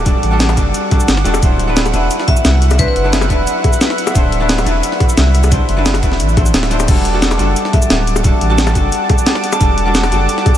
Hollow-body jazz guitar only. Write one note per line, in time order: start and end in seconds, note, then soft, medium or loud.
0.05 0.29 G3 medium
0.05 0.30 D4 medium
0.05 0.30 F#4 medium
0.05 0.30 A4 loud
0.31 0.47 G3 loud
0.31 0.48 D4 medium
0.31 0.48 F#4 medium
0.31 0.48 A4 loud
0.56 0.89 G3 medium
0.56 0.90 D4 medium
0.56 0.90 F#4 medium
0.56 0.90 A4 medium
0.90 1.07 G3 medium
0.90 1.07 D4 medium
0.90 1.07 F#4 medium
0.90 1.08 A4 medium
1.24 1.40 G3 loud
1.24 1.40 D4 medium
1.24 1.41 F#4 medium
1.24 1.41 A4 loud
1.42 1.66 F#3 medium
1.42 1.66 D4 medium
1.42 1.67 E4 medium
1.42 1.67 C5 medium
1.67 1.84 F#3 loud
1.67 1.84 D4 medium
1.67 1.84 E4 medium
1.67 1.85 B4 loud
1.92 2.76 F#3 medium
1.92 2.77 D4 medium
1.92 2.77 E4 medium
1.96 2.78 B4 loud
2.78 3.02 F#3 medium
2.78 3.03 D4 medium
2.78 3.03 E4 medium
2.78 3.03 C5 medium
3.04 3.20 F#3 loud
3.04 3.20 D4 medium
3.04 3.21 E4 medium
3.04 3.21 B4 loud
3.28 4.12 F#3 medium
3.28 4.13 D4 medium
3.28 4.14 E4 medium
3.32 4.15 B4 loud
4.14 4.39 F#3 medium
4.14 4.39 D4 medium
4.14 4.39 E4 medium
4.14 4.40 C5 medium
4.40 4.56 F#3 loud
4.40 4.57 D4 medium
4.40 4.57 E4 medium
4.40 4.57 B4 loud
4.64 5.49 F#3 medium
4.64 5.49 D4 medium
4.64 5.50 E4 medium
4.68 5.51 B4 loud
5.51 5.75 F#3 medium
5.51 5.75 D4 medium
5.51 5.76 E4 medium
5.51 5.76 C5 medium
5.77 5.93 F#3 loud
5.77 5.93 D4 medium
5.77 5.93 E4 medium
5.77 5.94 B4 loud
6.02 6.35 F#3 medium
6.02 6.35 D4 medium
6.02 6.36 E4 medium
6.02 6.36 B4 medium
6.36 6.52 F#3 medium
6.36 6.53 D4 medium
6.36 6.53 E4 medium
6.36 6.53 C5 medium
6.70 6.86 F#3 medium
6.70 6.86 D4 medium
6.70 6.86 E4 medium
6.70 6.87 C5 loud
6.87 7.12 G3 medium
6.87 7.12 D4 medium
6.87 7.12 F#4 medium
6.87 7.13 A4 medium
7.13 7.29 G3 loud
7.13 7.30 D4 medium
7.13 7.30 F#4 medium
7.13 7.30 A4 loud
7.38 8.22 G3 medium
7.38 8.22 D4 medium
7.38 8.23 F#4 medium
7.42 8.24 A4 medium
8.24 8.48 G3 medium
8.24 8.48 D4 medium
8.24 8.49 F#4 medium
8.24 8.49 A4 loud
8.49 8.66 G3 loud
8.49 8.66 D4 medium
8.49 8.66 F#4 medium
8.49 8.67 A4 loud
8.73 9.58 G3 medium
8.73 9.58 D4 medium
8.73 9.59 F#4 medium
8.78 9.60 A4 loud
9.60 9.84 G3 medium
9.60 9.84 D4 medium
9.60 9.85 F#4 medium
9.60 9.85 A4 medium
9.86 10.02 G3 loud
9.86 10.02 D4 medium
9.86 10.02 F#4 medium
9.86 10.03 A4 loud
10.10 10.58 G3 medium
10.10 10.58 D4 medium
10.10 10.58 F#4 medium
10.14 10.58 A4 loud